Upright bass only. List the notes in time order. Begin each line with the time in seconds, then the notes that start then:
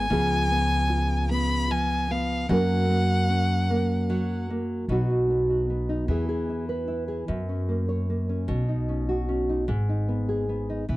0.11 C#2
2.49 F#2
4.88 B1
6.08 E2
7.29 F#2
8.48 B1
9.68 G#1
10.89 E1